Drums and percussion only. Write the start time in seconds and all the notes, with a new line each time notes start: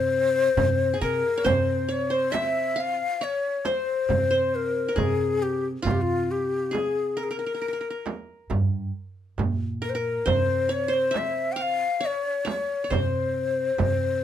0.57 darbuka dum, frame drum
1.02 darbuka ka
1.24 darbuka ka
1.45 darbuka dum, frame drum
2.33 darbuka tek, frame drum
2.77 darbuka ka
3.21 darbuka ka
3.65 darbuka tek, frame drum
4.09 darbuka dum, frame drum
4.97 darbuka dum, frame drum
5.84 darbuka dum, frame drum
6.73 darbuka tek, frame drum
7.18 darbuka ka
7.62 darbuka ka
8.06 darbuka tek, frame drum
8.50 darbuka dum, frame drum
9.38 darbuka dum, frame drum
10.27 darbuka dum, frame drum
11.14 darbuka tek, frame drum
11.59 darbuka ka
12.02 darbuka ka
12.46 darbuka tek, frame drum
12.91 darbuka dum, frame drum
13.78 darbuka dum, frame drum